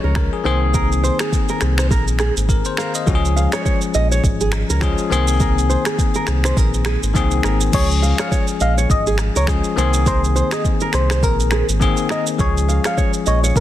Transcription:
Already playing: F3 G#3 C#4 G#4 C#5
0.04 C#2 A#4
0.15 A#4, finger snap, kick, cross-stick
0.33 G#4
0.44 C2 D#3 A#3 C4 G#4 C5
0.74 A#4, kick, shaker
0.92 shaker
1.03 C5, shaker
1.19 G#4, finger snap, cross-stick, shaker
1.32 kick, shaker
1.49 A#4, shaker
1.61 C2, finger snap, cross-stick, shaker
1.78 C5, finger snap, cross-stick, shaker
1.91 A#1 A#4, kick, shaker
2.08 shaker
2.19 G#4, finger snap, cross-stick, shaker
2.37 G#1, shaker
2.49 A#4, kick, shaker
2.65 C5, shaker
2.77 A#4 F5, finger snap, cross-stick, shaker
2.95 D#5, shaker
3.06 C#2 F3 G#3 C#4 F#4, kick, shaker
3.15 G#4
3.25 shaker
3.36 F5, shaker
3.52 C#5, finger snap, cross-stick, shaker
3.65 C#5, kick, shaker
3.81 shaker
3.94 A#1 D#5, shaker
4.12 C#5, shaker
4.24 G#1, kick, shaker
4.41 G#4, shaker
4.52 finger snap, cross-stick, shaker
4.70 C#2 A#4, shaker
4.81 F3 G#3 C#4 G#4, finger snap, kick, cross-stick, shaker
4.98 shaker
5.10 C2 D#3 A#3 C4 G#4 C5, shaker
5.28 shaker
5.40 A#4, kick, shaker
5.58 shaker
5.69 C5, shaker
5.85 G#4, finger snap, cross-stick, shaker
5.98 kick, shaker
6.15 A#4, shaker
6.27 C2, finger snap, cross-stick, shaker
6.44 C5, finger snap, cross-stick, shaker
6.57 A#1 A#4, kick, shaker
6.74 shaker
6.85 G#4, finger snap, cross-stick, shaker
7.03 G#1, shaker
7.14 C2 D#3 A#3 C4 G#4, kick, shaker
7.31 shaker
7.43 G#1 A#4, finger snap, cross-stick, shaker
7.61 shaker
7.72 C#2 F3 G#3 C#4 G#4 C#5, kick, crash, shaker
7.91 shaker
8.03 F5, shaker
8.18 C#5 F5, finger snap, cross-stick, shaker
8.32 C#5, kick, shaker
8.48 shaker
8.60 A#1 D#5 F5, shaker
8.78 C#5, shaker
8.90 G#1 D#5, kick, shaker
9.07 G#4, shaker
9.18 finger snap, cross-stick, shaker
9.36 C#2 A#4 C#5, shaker
9.47 F3 G#3 C#4 G#4, finger snap, kick, cross-stick, shaker
9.64 shaker
9.76 C2 D#3 A#3 C4 G#4 C5, shaker
9.94 shaker
10.06 A#4 C5, kick, shaker
10.24 shaker
10.36 C5, shaker
10.51 G#4 D#5, finger snap, cross-stick, shaker
10.65 kick, shaker
10.81 A#4, shaker
10.93 C2 C5, finger snap, cross-stick, shaker
11.10 C5, finger snap, cross-stick, shaker
11.23 A#1 A#4, kick, shaker
11.40 shaker
11.51 G#4, finger snap, cross-stick, shaker
11.69 G#1, shaker
11.80 D#3 A#3 C4 G#4, kick, shaker
11.97 shaker
12.09 A#4 D#5, finger snap, cross-stick, shaker
12.27 shaker
12.38 C#2 F3 G#3 C#4 G#4 C#5, kick, shaker
12.57 shaker
12.68 F5, shaker
12.84 C#5 F5, finger snap, cross-stick, shaker
12.98 C#5, kick, shaker
13.14 shaker
13.26 A#1 C#5 D#5, shaker
13.44 C#5, shaker
13.56 G#1 A#4, kick, shaker

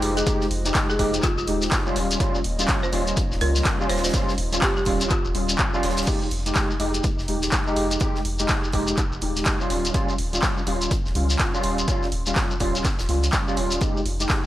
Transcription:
Already playing: G#3 D#4 F4 G4 C5 D#5
0.02 F1, closed hi-hat, open hi-hat
0.17 G#4, closed hi-hat, shekere
0.26 G#3 D#4 G4, kick, closed hi-hat, shekere
0.41 snare, shekere
0.51 F1, closed hi-hat, open hi-hat
0.65 G#3 D#4 G4, closed hi-hat, shekere
0.74 kick, snare, clap, closed hi-hat, shekere
0.90 G#4, shekere
0.99 F1 G#3 D#4 G4 G#4, kick, closed hi-hat, open hi-hat
1.13 closed hi-hat, shekere
1.23 F4, kick, clap, closed hi-hat, shekere
1.38 F1 F4, shekere
1.47 D#1 G#3 D#4 G4, closed hi-hat, open hi-hat
1.62 snare, closed hi-hat, shekere
1.71 kick, snare, clap, closed hi-hat, shekere
1.86 G3 C#4 F4, shekere
1.96 D#1 A#3 D#4 C#5 D#5, snare, closed hi-hat, open hi-hat
2.11 closed hi-hat, shekere
2.20 G3 C#4 F4, kick, closed hi-hat, shekere
2.35 shekere
2.44 D#1, closed hi-hat, open hi-hat
2.59 G3 C#4 F4, closed hi-hat, shekere
2.68 kick, snare, clap, closed hi-hat, shekere
2.83 C5, shekere
2.92 D#1 G3 C#4 F4, closed hi-hat, open hi-hat
3.07 closed hi-hat, shekere
3.17 kick, closed hi-hat, shekere
3.32 D#1, snare, shekere
3.41 C#2 G3 C#4 F4 A#4, closed hi-hat, open hi-hat
3.56 snare, closed hi-hat, shekere
3.65 kick, snare, clap, closed hi-hat, shekere
3.80 G3 C#4 F4, shekere
3.89 D#1 C5, snare, closed hi-hat, open hi-hat
3.97 snare, closed hi-hat
4.04 C5, snare, closed hi-hat, shekere
4.09 snare, closed hi-hat
4.13 G3 C#4 F4, kick, closed hi-hat, shekere
4.29 snare, shekere
4.38 D#1, closed hi-hat, open hi-hat
4.52 G3 C#4 F4, closed hi-hat, shekere
4.62 G4, kick, snare, clap, closed hi-hat, shekere
4.77 G4, shekere
4.85 D#1 G3 C#4 F4, kick, closed hi-hat, open hi-hat
5.01 closed hi-hat, shekere
5.10 F4, kick, clap, closed hi-hat, shekere
5.25 D#1, shekere
5.34 D#1 G3 C#4 F4, closed hi-hat, open hi-hat
5.49 closed hi-hat, shekere
5.59 kick, clap, closed hi-hat, shekere
5.73 G3 C#4 F4, shekere
5.83 D#1, snare, closed hi-hat, open hi-hat
5.90 snare, closed hi-hat
5.97 snare, closed hi-hat, shekere
6.03 snare, closed hi-hat
6.07 G#3 D#4 G4, kick, closed hi-hat, crash, shekere
6.22 shekere
6.31 F1, closed hi-hat, open hi-hat
6.46 G#3 D#4 G4, closed hi-hat, shekere
6.55 kick, snare, clap, closed hi-hat, shekere
6.71 shekere
6.79 F1 G#3 D#4 G4, closed hi-hat, open hi-hat
6.94 closed hi-hat, shekere
7.03 kick, closed hi-hat, shekere
7.19 F1, snare, shekere
7.28 D#1 G#3 D#4 G4, closed hi-hat, open hi-hat
7.43 snare, closed hi-hat, shekere
7.52 kick, snare, clap, closed hi-hat, shekere
7.67 G#3 D#4 G4, shekere
7.76 F1, closed hi-hat, open hi-hat
7.91 closed hi-hat, shekere
8.00 G#3 D#4 G4, kick, closed hi-hat, shekere
8.15 snare, shekere
8.25 F1, closed hi-hat, open hi-hat
8.39 G#3 D#4 G4, closed hi-hat, shekere
8.49 kick, snare, clap, closed hi-hat, shekere
8.64 shekere
8.72 F1 G#3 D#4 G4, kick, closed hi-hat, open hi-hat
8.87 closed hi-hat, shekere
8.97 kick, clap, closed hi-hat, shekere
9.12 F1, shekere
9.21 D#1 G#3 D#4 G4, closed hi-hat, open hi-hat
9.36 snare, closed hi-hat, shekere
9.45 kick, snare, clap, closed hi-hat, shekere
9.60 G3 C#4 F4, shekere
9.70 D#1, snare, closed hi-hat, open hi-hat
9.85 closed hi-hat, shekere
9.94 G3 C#4 F4, kick, closed hi-hat, shekere
10.09 shekere
10.18 D#1, closed hi-hat, open hi-hat
10.33 G3 C#4 F4, closed hi-hat, shekere
10.42 kick, snare, clap, closed hi-hat, shekere
10.58 shekere
10.67 D#1 G3 C#4 F4, closed hi-hat, open hi-hat
10.82 closed hi-hat, shekere
10.91 kick, closed hi-hat, shekere
11.06 D#1, snare, shekere
11.15 C#2 G3 C#4 F4, closed hi-hat, open hi-hat
11.30 snare, closed hi-hat, shekere
11.39 kick, snare, clap, closed hi-hat, shekere
11.54 G3 C#4 F4, shekere
11.63 D#1, closed hi-hat, open hi-hat
11.78 closed hi-hat, shekere
11.87 G3 C#4 F4, kick, closed hi-hat, shekere
12.03 snare, shekere
12.12 D#1, closed hi-hat, open hi-hat
12.26 G3 C#4 F4, closed hi-hat, shekere
12.36 kick, snare, clap, closed hi-hat, shekere
12.51 shekere
12.60 D#1 G3 C#4 F4, kick, closed hi-hat, open hi-hat
12.75 closed hi-hat, shekere
12.84 kick, snare, clap, closed hi-hat, shekere
12.99 D#1, snare, closed hi-hat, shekere
13.08 C#2 G3 C#4 F4, closed hi-hat, open hi-hat
13.23 snare, closed hi-hat, shekere
13.32 kick, snare, clap, closed hi-hat, shekere
13.47 G3 C#4 F4, shekere
13.57 D#1, snare, closed hi-hat, open hi-hat
13.71 closed hi-hat, shekere
13.81 G#3 G4, kick, closed hi-hat, shekere
13.97 shekere
14.06 F1, closed hi-hat, open hi-hat
14.20 G#3 D#4 G4, closed hi-hat, shekere
14.30 kick, snare, clap, closed hi-hat, shekere

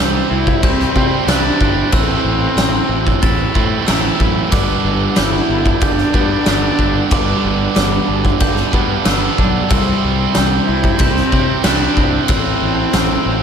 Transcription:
Already playing: C3 G3 C4 E4 G6
0.00 C2
0.30 C2 C4 E4
0.47 kick
0.62 C2 C4 E4 G6, kick, crash
0.80 snare
0.95 C3 G3 C4 E4, kick
1.26 C2 C3 G3 D4 E4 F#6, snare, crash
1.30 C4 E4
1.60 G1 C4, kick
1.92 A1 A2 E3 A3 C4 E4 E6, kick, crash
2.24 A1
2.56 A1 C4 E6, snare, crash
2.89 A1
3.07 kick
3.22 A1 E4 A6, kick, crash
3.54 A2 E3 A3 C4 E4, kick
3.86 A1 A2 E3 A3 C4 E4 E6, snare, crash
4.19 A1 F#3, kick
4.51 G1 G2 D3 G3 B3 D4 D6, kick, crash
4.84 G1
5.16 G1 B3 E4 G6, snare, crash
5.49 G1 D4
5.66 kick
5.81 G1 D4 G4 G6, kick, crash
5.98 snare
6.13 G2 D3 G3 B3 D4, kick
6.45 G1 G2 D3 G3 B3 D4 G4 E6, snare, crash
6.79 G1 D4, kick
7.10 G1 G2 D3 G3 B3 D4 D6, kick, crash
7.44 G1
7.75 G1 B3 D6, snare, crash
8.08 G1 D4
8.25 kick
8.40 G1 G6, kick, crash
8.56 snare
8.72 G2 D3 G3 B3 D4, kick
9.05 G1 G2 D3 G3 B3 D4 E6, snare, crash
9.38 B1 F#3 D4, kick
9.69 C2 C3 G3 C4 E4 E6, kick, crash
10.04 C2
10.34 C2 G3 G6, snare, crash
10.66 C2 C4 E4
10.84 kick
10.98 C2 C4 E4 G6, kick, crash
11.16 snare
11.31 C3 G3 C4 E4, kick
11.63 C2 C3 G3 C4 D4 E4 F#6, snare, crash
11.97 C2 C4, kick
12.28 A1 A2 E3 A3 C4 E4 E6, kick, crash
12.61 A1
12.93 A1 C4 E6, snare, crash
13.26 A1

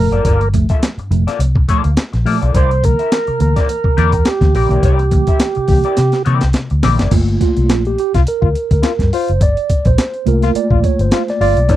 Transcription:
Already playing: F1 A#4
0.11 F#1 F3 A3 A#3 F4 A4 D5, closed hi-hat
0.25 G1 G2 A#3 F4 A4 D5, kick, closed hi-hat
0.41 F3 A3, muted clean electric guitar stroke, closed hi-hat
0.53 A#2 F3 A3, muted clean electric guitar stroke, kick, closed hi-hat
0.69 A#3 F4 A4 E5, kick, closed hi-hat
0.82 F3 A3, muted clean electric guitar stroke, snare, closed hi-hat
0.98 G2, muted fingered electric bass stroke, muted clean electric guitar stroke, closed hi-hat
1.11 F1 A#2 F3 A3, closed hi-hat
1.27 A#3 F4 A4 D5, snare, closed hi-hat
1.39 C2 F3 A3, muted clean electric guitar stroke, closed hi-hat
1.55 G2, muted clean electric guitar stroke, kick
1.68 A#2 F3 A3 A#3 F4 A4 D5, kick, closed hi-hat
1.84 D2, muted clean electric guitar stroke, closed hi-hat
1.97 muted clean electric guitar stroke, snare, closed hi-hat
2.13 A#1, muted clean electric guitar stroke, snare, closed hi-hat
2.25 A#2 F3 A3 A#3 F4 A4 D5, open hi-hat
2.42 B1 A#3 F4 A4 D5, closed hi-hat
2.54 C2 C3 C4 E4 A#4 C5 D5, kick, closed hi-hat
2.71 E3 A#3, muted clean electric guitar stroke, closed hi-hat
2.83 D3 E3 A#3 A#4, muted clean electric guitar stroke, kick, closed hi-hat
2.99 C4 E4 A#4 E5, closed hi-hat
3.11 E3 A#3, muted clean electric guitar stroke, snare, closed hi-hat
3.27 C3, muted clean electric guitar stroke, muted fingered electric bass stroke, closed hi-hat
3.39 D2 D3 E3 A#3 A#4, closed hi-hat
3.56 C4 E4 A#4 D5, kick, snare, closed hi-hat
3.68 E3 A#3, muted clean electric guitar stroke, closed hi-hat
3.84 C3, muted clean electric guitar stroke, kick
3.97 E2 D3 E3 A#3 C4 E4 A#4 D5, closed hi-hat
4.12 muted clean electric guitar stroke, kick, closed hi-hat
4.25 G4, muted clean electric guitar stroke, snare, closed hi-hat
4.41 D2 D3 E3 A#3, muted clean electric guitar stroke, kick, snare, closed hi-hat
4.55 A#1 C3 C4 E4 G4 A#4 D5, open hi-hat
4.69 B1 D3 E3 A#3 C4 E4 A#4 D5, closed hi-hat
4.82 C2 C3 C4 E4 A#4 D5, kick, closed hi-hat
4.99 E3 A#3, muted clean electric guitar stroke, closed hi-hat
5.11 D3 E3 A#3, muted clean electric guitar stroke, kick, closed hi-hat
5.27 C4 E4 A#4 E5, kick, closed hi-hat
5.40 E3 A#3, muted clean electric guitar stroke, snare, closed hi-hat
5.55 C3, muted clean electric guitar stroke, muted fingered electric bass stroke, closed hi-hat
5.68 C2 D3 E3 A#3 G4, kick, open hi-hat
5.84 C4 E4 A#4 D5, closed hi-hat
5.97 C3 E3 A#3, snare, closed hi-hat
6.12 C3, muted clean electric guitar stroke, snare, closed hi-hat
6.25 C3 D3 E3 A#3 C4 E4 A#4 D5, closed hi-hat
6.41 C2, muted clean electric guitar stroke, snare, closed hi-hat
6.53 C3, muted clean electric guitar stroke, snare, closed hi-hat
6.70 D2, muted clean electric guitar stroke, closed hi-hat
6.83 A#1 D3 E3 A#3 C4 E4 A#4 D5, snare, open hi-hat
6.99 F#1 E3 A#3 C4 E4 A#4 D5, snare, closed hi-hat
7.11 G1 A3 A#3 F4, kick, closed hi-hat, crash
7.28 closed hi-hat
7.41 F4, kick, closed hi-hat
7.57 C2, closed hi-hat
7.69 A#1, snare, closed hi-hat
7.85 G4, closed hi-hat
7.98 G4, closed hi-hat
8.14 C2 F4, kick, snare, closed hi-hat
8.27 A#4, closed hi-hat
8.41 D2 F4, kick
8.55 closed hi-hat
8.71 D2 A#4, kick, closed hi-hat
8.82 F4, snare, closed hi-hat
8.99 G2, kick, snare, closed hi-hat
9.13 F4 C5, open hi-hat
9.28 F#1, closed hi-hat
9.41 G1 D5, kick, closed hi-hat
9.57 closed hi-hat
9.70 kick, closed hi-hat
9.85 A#1 C5, kick, closed hi-hat
9.98 snare, closed hi-hat
10.14 closed hi-hat
10.26 C2 A3 A#3 F4 A#4, closed hi-hat
10.42 F4, snare, closed hi-hat
10.55 D5, muted fingered electric bass stroke, closed hi-hat
10.70 A#1 F4, kick
10.84 C#5, kick, closed hi-hat
10.99 G1 C5, closed hi-hat
11.11 F4, snare, closed hi-hat
11.28 D5, snare, closed hi-hat
11.40 G1 F4 D5, open hi-hat
11.56 B1, closed hi-hat
11.69 C2 A#3 C4 D4 E4 A#4 D5, kick, closed hi-hat

